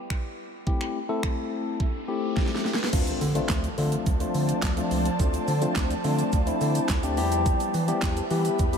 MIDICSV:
0, 0, Header, 1, 7, 480
1, 0, Start_track
1, 0, Tempo, 566038
1, 566, Time_signature, 4, 2, 24, 8
1, 7445, End_track
2, 0, Start_track
2, 0, Title_t, "Ambient pad"
2, 0, Program_c, 0, 92
2, 2486, Note_on_c, 0, 53, 79
2, 2486, Note_on_c, 0, 74, 73
2, 2488, Note_on_c, 0, 72, 70
2, 2488, Note_on_c, 0, 81, 85
2, 6052, Note_off_c, 0, 53, 0
2, 6052, Note_off_c, 0, 74, 0
2, 6053, Note_off_c, 0, 72, 0
2, 6053, Note_off_c, 0, 81, 0
2, 6085, Note_on_c, 0, 71, 79
2, 6086, Note_on_c, 0, 67, 85
2, 6086, Note_on_c, 0, 76, 80
2, 6087, Note_on_c, 0, 83, 93
2, 7445, Note_off_c, 0, 67, 0
2, 7445, Note_off_c, 0, 71, 0
2, 7445, Note_off_c, 0, 76, 0
2, 7445, Note_off_c, 0, 83, 0
2, 7445, End_track
3, 0, Start_track
3, 0, Title_t, "Tine electric piano"
3, 0, Program_c, 1, 4
3, 563, Note_on_c, 1, 57, 81
3, 565, Note_on_c, 1, 60, 79
3, 566, Note_on_c, 1, 64, 77
3, 567, Note_on_c, 1, 67, 93
3, 829, Note_off_c, 1, 57, 0
3, 830, Note_off_c, 1, 60, 0
3, 830, Note_off_c, 1, 64, 0
3, 831, Note_off_c, 1, 67, 0
3, 922, Note_on_c, 1, 57, 90
3, 923, Note_on_c, 1, 60, 79
3, 924, Note_on_c, 1, 64, 80
3, 926, Note_on_c, 1, 69, 98
3, 1542, Note_off_c, 1, 57, 0
3, 1542, Note_off_c, 1, 60, 0
3, 1543, Note_off_c, 1, 64, 0
3, 1544, Note_off_c, 1, 69, 0
3, 1761, Note_on_c, 1, 57, 89
3, 1763, Note_on_c, 1, 60, 78
3, 1765, Note_on_c, 1, 64, 77
3, 1766, Note_on_c, 1, 67, 96
3, 2293, Note_off_c, 1, 57, 0
3, 2294, Note_off_c, 1, 60, 0
3, 2295, Note_off_c, 1, 64, 0
3, 2295, Note_off_c, 1, 67, 0
3, 2482, Note_on_c, 1, 57, 80
3, 2483, Note_on_c, 1, 60, 77
3, 2484, Note_on_c, 1, 62, 78
3, 2485, Note_on_c, 1, 65, 95
3, 2748, Note_off_c, 1, 57, 0
3, 2749, Note_off_c, 1, 60, 0
3, 2749, Note_off_c, 1, 62, 0
3, 2750, Note_off_c, 1, 65, 0
3, 2840, Note_on_c, 1, 57, 87
3, 2842, Note_on_c, 1, 60, 80
3, 2843, Note_on_c, 1, 62, 81
3, 2845, Note_on_c, 1, 65, 98
3, 3108, Note_off_c, 1, 57, 0
3, 3108, Note_off_c, 1, 60, 0
3, 3109, Note_off_c, 1, 62, 0
3, 3110, Note_off_c, 1, 65, 0
3, 3202, Note_on_c, 1, 57, 79
3, 3203, Note_on_c, 1, 60, 70
3, 3204, Note_on_c, 1, 62, 74
3, 3206, Note_on_c, 1, 65, 88
3, 3468, Note_off_c, 1, 57, 0
3, 3469, Note_off_c, 1, 60, 0
3, 3470, Note_off_c, 1, 62, 0
3, 3470, Note_off_c, 1, 65, 0
3, 3563, Note_on_c, 1, 57, 87
3, 3564, Note_on_c, 1, 60, 79
3, 3566, Note_on_c, 1, 62, 78
3, 3567, Note_on_c, 1, 65, 96
3, 3917, Note_off_c, 1, 57, 0
3, 3918, Note_off_c, 1, 60, 0
3, 3919, Note_off_c, 1, 62, 0
3, 3919, Note_off_c, 1, 65, 0
3, 4042, Note_on_c, 1, 57, 89
3, 4043, Note_on_c, 1, 60, 80
3, 4046, Note_on_c, 1, 62, 76
3, 4047, Note_on_c, 1, 65, 94
3, 4309, Note_off_c, 1, 57, 0
3, 4309, Note_off_c, 1, 60, 0
3, 4310, Note_off_c, 1, 62, 0
3, 4311, Note_off_c, 1, 65, 0
3, 4402, Note_on_c, 1, 57, 87
3, 4404, Note_on_c, 1, 60, 77
3, 4405, Note_on_c, 1, 62, 78
3, 4407, Note_on_c, 1, 65, 94
3, 4669, Note_off_c, 1, 57, 0
3, 4669, Note_off_c, 1, 60, 0
3, 4670, Note_off_c, 1, 62, 0
3, 4671, Note_off_c, 1, 65, 0
3, 4762, Note_on_c, 1, 57, 87
3, 4763, Note_on_c, 1, 60, 84
3, 4765, Note_on_c, 1, 62, 81
3, 4766, Note_on_c, 1, 65, 99
3, 5028, Note_off_c, 1, 57, 0
3, 5029, Note_off_c, 1, 60, 0
3, 5030, Note_off_c, 1, 62, 0
3, 5030, Note_off_c, 1, 65, 0
3, 5122, Note_on_c, 1, 57, 86
3, 5123, Note_on_c, 1, 60, 75
3, 5124, Note_on_c, 1, 62, 74
3, 5125, Note_on_c, 1, 65, 94
3, 5389, Note_off_c, 1, 57, 0
3, 5389, Note_off_c, 1, 60, 0
3, 5389, Note_off_c, 1, 62, 0
3, 5390, Note_off_c, 1, 65, 0
3, 5482, Note_on_c, 1, 57, 90
3, 5484, Note_on_c, 1, 60, 82
3, 5485, Note_on_c, 1, 62, 81
3, 5487, Note_on_c, 1, 64, 101
3, 5837, Note_off_c, 1, 57, 0
3, 5838, Note_off_c, 1, 60, 0
3, 5838, Note_off_c, 1, 62, 0
3, 5839, Note_off_c, 1, 64, 0
3, 5963, Note_on_c, 1, 57, 89
3, 5963, Note_on_c, 1, 60, 78
3, 5965, Note_on_c, 1, 62, 80
3, 5966, Note_on_c, 1, 67, 97
3, 6075, Note_off_c, 1, 67, 0
3, 6081, Note_on_c, 1, 55, 90
3, 6082, Note_on_c, 1, 59, 84
3, 6083, Note_on_c, 1, 64, 85
3, 6084, Note_off_c, 1, 57, 0
3, 6084, Note_off_c, 1, 60, 0
3, 6085, Note_off_c, 1, 62, 0
3, 6085, Note_on_c, 1, 67, 101
3, 6563, Note_off_c, 1, 55, 0
3, 6564, Note_off_c, 1, 59, 0
3, 6564, Note_off_c, 1, 64, 0
3, 6565, Note_off_c, 1, 67, 0
3, 6682, Note_on_c, 1, 55, 91
3, 6683, Note_on_c, 1, 59, 81
3, 6684, Note_on_c, 1, 64, 83
3, 6686, Note_on_c, 1, 67, 98
3, 6949, Note_off_c, 1, 55, 0
3, 6949, Note_off_c, 1, 59, 0
3, 6950, Note_off_c, 1, 64, 0
3, 6951, Note_off_c, 1, 67, 0
3, 7042, Note_on_c, 1, 55, 83
3, 7043, Note_on_c, 1, 59, 76
3, 7045, Note_on_c, 1, 64, 74
3, 7046, Note_on_c, 1, 67, 91
3, 7309, Note_off_c, 1, 55, 0
3, 7309, Note_off_c, 1, 59, 0
3, 7310, Note_off_c, 1, 64, 0
3, 7310, Note_off_c, 1, 67, 0
3, 7401, Note_on_c, 1, 55, 87
3, 7403, Note_on_c, 1, 59, 79
3, 7404, Note_on_c, 1, 64, 81
3, 7405, Note_on_c, 1, 67, 98
3, 7445, Note_off_c, 1, 55, 0
3, 7445, Note_off_c, 1, 59, 0
3, 7445, Note_off_c, 1, 64, 0
3, 7445, Note_off_c, 1, 67, 0
3, 7445, End_track
4, 0, Start_track
4, 0, Title_t, "Analog synth bass"
4, 0, Program_c, 2, 38
4, 2485, Note_on_c, 2, 38, 98
4, 2641, Note_off_c, 2, 38, 0
4, 2724, Note_on_c, 2, 50, 101
4, 2880, Note_off_c, 2, 50, 0
4, 2966, Note_on_c, 2, 38, 102
4, 3122, Note_off_c, 2, 38, 0
4, 3205, Note_on_c, 2, 50, 99
4, 3361, Note_off_c, 2, 50, 0
4, 3447, Note_on_c, 2, 38, 101
4, 3603, Note_off_c, 2, 38, 0
4, 3685, Note_on_c, 2, 50, 98
4, 3841, Note_off_c, 2, 50, 0
4, 3926, Note_on_c, 2, 38, 99
4, 4082, Note_off_c, 2, 38, 0
4, 4165, Note_on_c, 2, 37, 93
4, 4321, Note_off_c, 2, 37, 0
4, 4405, Note_on_c, 2, 38, 117
4, 4561, Note_off_c, 2, 38, 0
4, 4644, Note_on_c, 2, 50, 112
4, 4801, Note_off_c, 2, 50, 0
4, 4887, Note_on_c, 2, 38, 102
4, 5042, Note_off_c, 2, 38, 0
4, 5126, Note_on_c, 2, 50, 102
4, 5282, Note_off_c, 2, 50, 0
4, 5367, Note_on_c, 2, 38, 107
4, 5522, Note_off_c, 2, 38, 0
4, 5606, Note_on_c, 2, 50, 102
4, 5762, Note_off_c, 2, 50, 0
4, 5846, Note_on_c, 2, 38, 96
4, 6086, Note_on_c, 2, 40, 104
4, 6099, Note_off_c, 2, 38, 0
4, 6398, Note_off_c, 2, 40, 0
4, 6565, Note_on_c, 2, 52, 98
4, 6721, Note_off_c, 2, 52, 0
4, 6807, Note_on_c, 2, 40, 104
4, 6962, Note_off_c, 2, 40, 0
4, 7044, Note_on_c, 2, 52, 106
4, 7201, Note_off_c, 2, 52, 0
4, 7287, Note_on_c, 2, 40, 112
4, 7442, Note_off_c, 2, 40, 0
4, 7445, End_track
5, 0, Start_track
5, 0, Title_t, "Impact"
5, 0, Program_c, 3, 103
5, 2485, Note_on_c, 3, 60, 83
5, 4405, Note_off_c, 3, 60, 0
5, 7445, End_track
6, 0, Start_track
6, 0, Title_t, "Riser"
6, 0, Program_c, 4, 103
6, 565, Note_on_c, 4, 60, 80
6, 2485, Note_off_c, 4, 60, 0
6, 7445, End_track
7, 0, Start_track
7, 0, Title_t, "Drums"
7, 87, Note_on_c, 9, 26, 108
7, 87, Note_on_c, 9, 36, 113
7, 172, Note_off_c, 9, 26, 0
7, 172, Note_off_c, 9, 36, 0
7, 566, Note_on_c, 9, 36, 109
7, 651, Note_off_c, 9, 36, 0
7, 685, Note_on_c, 9, 26, 57
7, 770, Note_off_c, 9, 26, 0
7, 1045, Note_on_c, 9, 26, 103
7, 1046, Note_on_c, 9, 36, 115
7, 1130, Note_off_c, 9, 26, 0
7, 1131, Note_off_c, 9, 36, 0
7, 1527, Note_on_c, 9, 36, 105
7, 1611, Note_off_c, 9, 36, 0
7, 2005, Note_on_c, 9, 38, 53
7, 2006, Note_on_c, 9, 36, 108
7, 2085, Note_off_c, 9, 38, 0
7, 2085, Note_on_c, 9, 38, 54
7, 2091, Note_off_c, 9, 36, 0
7, 2165, Note_off_c, 9, 38, 0
7, 2165, Note_on_c, 9, 38, 69
7, 2246, Note_off_c, 9, 38, 0
7, 2246, Note_on_c, 9, 38, 70
7, 2324, Note_off_c, 9, 38, 0
7, 2324, Note_on_c, 9, 38, 90
7, 2404, Note_off_c, 9, 38, 0
7, 2404, Note_on_c, 9, 38, 88
7, 2484, Note_on_c, 9, 49, 98
7, 2485, Note_on_c, 9, 36, 121
7, 2486, Note_on_c, 9, 82, 66
7, 2489, Note_off_c, 9, 38, 0
7, 2569, Note_off_c, 9, 49, 0
7, 2570, Note_off_c, 9, 36, 0
7, 2571, Note_off_c, 9, 82, 0
7, 2605, Note_on_c, 9, 42, 49
7, 2605, Note_on_c, 9, 82, 58
7, 2689, Note_off_c, 9, 82, 0
7, 2690, Note_off_c, 9, 42, 0
7, 2723, Note_on_c, 9, 46, 80
7, 2725, Note_on_c, 9, 82, 51
7, 2808, Note_off_c, 9, 46, 0
7, 2810, Note_off_c, 9, 82, 0
7, 2843, Note_on_c, 9, 42, 64
7, 2845, Note_on_c, 9, 82, 50
7, 2928, Note_off_c, 9, 42, 0
7, 2929, Note_off_c, 9, 82, 0
7, 2957, Note_on_c, 9, 38, 89
7, 2964, Note_on_c, 9, 39, 116
7, 2965, Note_on_c, 9, 36, 121
7, 2965, Note_on_c, 9, 82, 67
7, 3042, Note_off_c, 9, 38, 0
7, 3048, Note_off_c, 9, 39, 0
7, 3050, Note_off_c, 9, 36, 0
7, 3050, Note_off_c, 9, 82, 0
7, 3086, Note_on_c, 9, 42, 55
7, 3087, Note_on_c, 9, 82, 49
7, 3171, Note_off_c, 9, 42, 0
7, 3172, Note_off_c, 9, 82, 0
7, 3204, Note_on_c, 9, 46, 78
7, 3288, Note_off_c, 9, 46, 0
7, 3325, Note_on_c, 9, 42, 80
7, 3325, Note_on_c, 9, 82, 59
7, 3409, Note_off_c, 9, 42, 0
7, 3410, Note_off_c, 9, 82, 0
7, 3445, Note_on_c, 9, 82, 72
7, 3447, Note_on_c, 9, 36, 118
7, 3530, Note_off_c, 9, 82, 0
7, 3531, Note_off_c, 9, 36, 0
7, 3564, Note_on_c, 9, 42, 46
7, 3565, Note_on_c, 9, 82, 56
7, 3649, Note_off_c, 9, 42, 0
7, 3650, Note_off_c, 9, 82, 0
7, 3684, Note_on_c, 9, 46, 76
7, 3685, Note_on_c, 9, 82, 51
7, 3769, Note_off_c, 9, 46, 0
7, 3769, Note_off_c, 9, 82, 0
7, 3805, Note_on_c, 9, 42, 82
7, 3806, Note_on_c, 9, 82, 50
7, 3890, Note_off_c, 9, 42, 0
7, 3891, Note_off_c, 9, 82, 0
7, 3920, Note_on_c, 9, 38, 95
7, 3923, Note_on_c, 9, 82, 80
7, 3926, Note_on_c, 9, 36, 117
7, 3926, Note_on_c, 9, 39, 118
7, 4004, Note_off_c, 9, 38, 0
7, 4008, Note_off_c, 9, 82, 0
7, 4011, Note_off_c, 9, 36, 0
7, 4011, Note_off_c, 9, 39, 0
7, 4045, Note_on_c, 9, 42, 54
7, 4046, Note_on_c, 9, 82, 56
7, 4130, Note_off_c, 9, 42, 0
7, 4131, Note_off_c, 9, 82, 0
7, 4164, Note_on_c, 9, 82, 50
7, 4165, Note_on_c, 9, 46, 79
7, 4249, Note_off_c, 9, 82, 0
7, 4250, Note_off_c, 9, 46, 0
7, 4285, Note_on_c, 9, 82, 54
7, 4286, Note_on_c, 9, 42, 86
7, 4369, Note_off_c, 9, 82, 0
7, 4371, Note_off_c, 9, 42, 0
7, 4405, Note_on_c, 9, 82, 72
7, 4406, Note_off_c, 9, 82, 0
7, 4406, Note_on_c, 9, 36, 121
7, 4406, Note_on_c, 9, 82, 61
7, 4490, Note_off_c, 9, 36, 0
7, 4490, Note_off_c, 9, 82, 0
7, 4524, Note_on_c, 9, 82, 55
7, 4527, Note_off_c, 9, 82, 0
7, 4527, Note_on_c, 9, 42, 49
7, 4527, Note_on_c, 9, 82, 46
7, 4611, Note_off_c, 9, 42, 0
7, 4611, Note_off_c, 9, 82, 0
7, 4644, Note_on_c, 9, 82, 51
7, 4645, Note_off_c, 9, 82, 0
7, 4645, Note_on_c, 9, 46, 77
7, 4645, Note_on_c, 9, 82, 61
7, 4730, Note_off_c, 9, 46, 0
7, 4730, Note_off_c, 9, 82, 0
7, 4763, Note_on_c, 9, 42, 69
7, 4763, Note_on_c, 9, 82, 71
7, 4766, Note_off_c, 9, 82, 0
7, 4766, Note_on_c, 9, 82, 49
7, 4848, Note_off_c, 9, 42, 0
7, 4851, Note_off_c, 9, 82, 0
7, 4879, Note_on_c, 9, 38, 90
7, 4885, Note_on_c, 9, 39, 113
7, 4885, Note_on_c, 9, 82, 68
7, 4886, Note_on_c, 9, 36, 116
7, 4887, Note_off_c, 9, 82, 0
7, 4887, Note_on_c, 9, 82, 67
7, 4964, Note_off_c, 9, 38, 0
7, 4970, Note_off_c, 9, 39, 0
7, 4971, Note_off_c, 9, 36, 0
7, 4971, Note_off_c, 9, 82, 0
7, 5007, Note_on_c, 9, 42, 52
7, 5007, Note_on_c, 9, 82, 54
7, 5008, Note_off_c, 9, 82, 0
7, 5008, Note_on_c, 9, 82, 50
7, 5092, Note_off_c, 9, 42, 0
7, 5093, Note_off_c, 9, 82, 0
7, 5124, Note_on_c, 9, 46, 77
7, 5124, Note_on_c, 9, 82, 53
7, 5209, Note_off_c, 9, 46, 0
7, 5209, Note_off_c, 9, 82, 0
7, 5245, Note_on_c, 9, 82, 58
7, 5246, Note_off_c, 9, 82, 0
7, 5246, Note_on_c, 9, 42, 76
7, 5246, Note_on_c, 9, 82, 79
7, 5331, Note_off_c, 9, 42, 0
7, 5331, Note_off_c, 9, 82, 0
7, 5362, Note_on_c, 9, 82, 84
7, 5365, Note_off_c, 9, 82, 0
7, 5365, Note_on_c, 9, 82, 72
7, 5367, Note_on_c, 9, 36, 115
7, 5450, Note_off_c, 9, 82, 0
7, 5452, Note_off_c, 9, 36, 0
7, 5486, Note_on_c, 9, 42, 49
7, 5486, Note_on_c, 9, 82, 56
7, 5571, Note_off_c, 9, 42, 0
7, 5571, Note_off_c, 9, 82, 0
7, 5604, Note_on_c, 9, 82, 50
7, 5605, Note_off_c, 9, 82, 0
7, 5605, Note_on_c, 9, 46, 76
7, 5605, Note_on_c, 9, 82, 53
7, 5689, Note_off_c, 9, 46, 0
7, 5689, Note_off_c, 9, 82, 0
7, 5725, Note_on_c, 9, 42, 86
7, 5725, Note_on_c, 9, 82, 51
7, 5810, Note_off_c, 9, 42, 0
7, 5810, Note_off_c, 9, 82, 0
7, 5839, Note_on_c, 9, 38, 92
7, 5843, Note_on_c, 9, 82, 76
7, 5846, Note_on_c, 9, 36, 117
7, 5846, Note_on_c, 9, 39, 116
7, 5924, Note_off_c, 9, 38, 0
7, 5928, Note_off_c, 9, 82, 0
7, 5931, Note_off_c, 9, 36, 0
7, 5931, Note_off_c, 9, 39, 0
7, 5964, Note_on_c, 9, 42, 54
7, 5964, Note_on_c, 9, 82, 53
7, 5966, Note_off_c, 9, 82, 0
7, 5966, Note_on_c, 9, 82, 55
7, 6049, Note_off_c, 9, 42, 0
7, 6051, Note_off_c, 9, 82, 0
7, 6083, Note_on_c, 9, 46, 79
7, 6083, Note_on_c, 9, 82, 51
7, 6168, Note_off_c, 9, 46, 0
7, 6168, Note_off_c, 9, 82, 0
7, 6205, Note_on_c, 9, 42, 89
7, 6205, Note_on_c, 9, 82, 85
7, 6290, Note_off_c, 9, 42, 0
7, 6290, Note_off_c, 9, 82, 0
7, 6324, Note_on_c, 9, 82, 72
7, 6325, Note_on_c, 9, 36, 121
7, 6326, Note_off_c, 9, 82, 0
7, 6326, Note_on_c, 9, 82, 65
7, 6410, Note_off_c, 9, 36, 0
7, 6411, Note_off_c, 9, 82, 0
7, 6445, Note_on_c, 9, 82, 55
7, 6446, Note_off_c, 9, 82, 0
7, 6446, Note_on_c, 9, 42, 46
7, 6446, Note_on_c, 9, 82, 48
7, 6531, Note_off_c, 9, 42, 0
7, 6531, Note_off_c, 9, 82, 0
7, 6564, Note_on_c, 9, 46, 79
7, 6564, Note_on_c, 9, 82, 58
7, 6565, Note_off_c, 9, 82, 0
7, 6565, Note_on_c, 9, 82, 49
7, 6649, Note_off_c, 9, 46, 0
7, 6650, Note_off_c, 9, 82, 0
7, 6683, Note_on_c, 9, 42, 69
7, 6683, Note_on_c, 9, 82, 68
7, 6686, Note_off_c, 9, 82, 0
7, 6686, Note_on_c, 9, 82, 48
7, 6768, Note_off_c, 9, 42, 0
7, 6771, Note_off_c, 9, 82, 0
7, 6798, Note_on_c, 9, 38, 93
7, 6805, Note_on_c, 9, 39, 117
7, 6805, Note_on_c, 9, 82, 66
7, 6806, Note_on_c, 9, 36, 116
7, 6883, Note_off_c, 9, 38, 0
7, 6889, Note_off_c, 9, 39, 0
7, 6890, Note_off_c, 9, 82, 0
7, 6891, Note_off_c, 9, 36, 0
7, 6926, Note_on_c, 9, 42, 52
7, 6926, Note_on_c, 9, 82, 53
7, 7011, Note_off_c, 9, 42, 0
7, 7011, Note_off_c, 9, 82, 0
7, 7043, Note_on_c, 9, 46, 74
7, 7043, Note_on_c, 9, 82, 54
7, 7128, Note_off_c, 9, 46, 0
7, 7128, Note_off_c, 9, 82, 0
7, 7163, Note_on_c, 9, 82, 58
7, 7165, Note_off_c, 9, 82, 0
7, 7165, Note_on_c, 9, 42, 73
7, 7165, Note_on_c, 9, 82, 75
7, 7249, Note_off_c, 9, 42, 0
7, 7249, Note_off_c, 9, 82, 0
7, 7283, Note_on_c, 9, 82, 73
7, 7287, Note_on_c, 9, 36, 116
7, 7368, Note_off_c, 9, 82, 0
7, 7372, Note_off_c, 9, 36, 0
7, 7404, Note_on_c, 9, 82, 56
7, 7405, Note_off_c, 9, 82, 0
7, 7405, Note_on_c, 9, 42, 49
7, 7405, Note_on_c, 9, 82, 47
7, 7445, Note_off_c, 9, 42, 0
7, 7445, Note_off_c, 9, 82, 0
7, 7445, End_track
0, 0, End_of_file